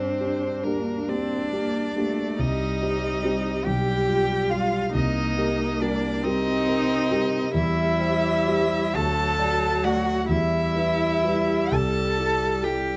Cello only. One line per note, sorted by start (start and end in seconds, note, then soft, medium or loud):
0.00 0.65 C4 medium
0.64 1.10 A#3 medium
1.08 2.38 D4 medium
2.38 3.66 D#4 medium
3.64 4.51 G4 medium
4.50 4.93 F4 medium
4.93 5.81 D#4 medium
5.80 6.25 D4 medium
6.23 7.54 D#4 medium
7.54 8.96 E4 medium
8.94 9.86 A4 medium
9.85 10.28 F#4 medium
10.28 11.74 E4 medium
11.72 12.65 A4 medium
12.64 12.97 G4 medium